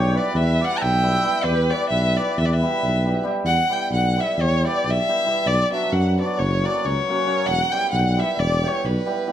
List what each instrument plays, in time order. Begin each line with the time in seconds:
Already playing: tuba B1, hammered dulcimer G3, accordion G4, violin C#5
0.12 hammered dulcimer G3 B3 E4 G4, accordion B4
0.17 violin D5
0.34 tuba E2, accordion B4, violin E5
0.59 hammered dulcimer G3 B3 E4 G4, accordion D5
0.65 violin F#5
0.77 accordion F#5, violin A#5
0.81 tuba B1, accordion E5, violin G5
1.02 hammered dulcimer G3 B3 E4 G4
1.22 hammered dulcimer G3 B3 E4 G4
1.43 tuba E2, accordion G4, violin B4
1.69 hammered dulcimer G3 B3 E4 G4, accordion B4, violin D5
1.90 tuba B1, accordion B4, violin E5
2.14 hammered dulcimer G3 B3 E4 G4, violin D5
2.19 accordion B4
2.37 tuba E2, accordion B4, violin E5
2.44 accordion B4, violin D5
2.52 accordion B4, violin E5
2.61 hammered dulcimer G3 B3 E4 G4
2.83 tuba B1
3.05 hammered dulcimer G3 B3 E4 G4
3.23 hammered dulcimer G3 B3 E4 G4
3.44 tuba E2, violin F#5
3.69 hammered dulcimer G3 B3 E4 G4, violin G5
3.91 tuba B1, violin F#5
4.17 hammered dulcimer G3 B3 E4 G4, violin E5
4.37 tuba E2
4.41 violin C#5
4.63 hammered dulcimer G3 B3 E4 G4
4.68 violin D5
4.84 tuba B1
4.90 violin E5
5.07 hammered dulcimer G3 B3 E4 G4
5.25 hammered dulcimer G3 B3 E4 G4
5.46 tuba B1, violin D5
5.70 hammered dulcimer F#3 B3 D4 F#4, violin E5
5.92 tuba F#2, violin F#5
6.17 hammered dulcimer F#3 B3 D4 F#4, violin D5
6.38 tuba F#1, violin C#5
6.63 hammered dulcimer F#3 A#3 C#4 F#4, violin D5
6.85 tuba C#2, violin C#5
7.08 hammered dulcimer F#3 A#3 C#4 F#4
7.25 hammered dulcimer F#3 A#3 C#4 F#4
7.46 tuba E1, violin F#5
7.71 hammered dulcimer G3 B3 E4 G4, violin G5
7.92 tuba B1, violin F#5
8.17 hammered dulcimer G3 B3 E4 G4, violin E5
8.38 tuba E1, violin D5
8.62 hammered dulcimer G3 B3 E4 G4
8.67 violin C#5
8.84 tuba B1, violin B4
9.06 hammered dulcimer G3 B3 E4 G4
9.27 hammered dulcimer G3 B3 E4 G4